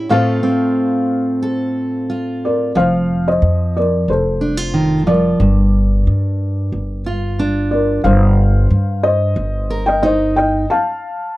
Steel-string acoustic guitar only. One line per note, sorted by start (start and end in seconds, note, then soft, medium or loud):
0.00 0.10 G4 medium
0.09 2.71 A2 medium
0.09 2.72 A3 soft
0.09 0.42 C4 soft
0.09 2.08 F4 soft
0.09 1.41 A4 medium
0.43 5.40 C4 soft
1.42 2.72 A4 medium
2.10 2.72 F4 soft
2.75 4.73 F3 medium
4.41 4.57 D4 soft
4.57 5.40 F4 soft
4.74 5.06 D#3 soft
5.07 5.40 F3 soft
5.40 8.04 G2 medium
7.06 8.01 F4 soft
7.39 8.01 D4 medium
8.05 10.69 G2 medium
9.70 10.65 A#4 medium
10.03 10.65 D#4 medium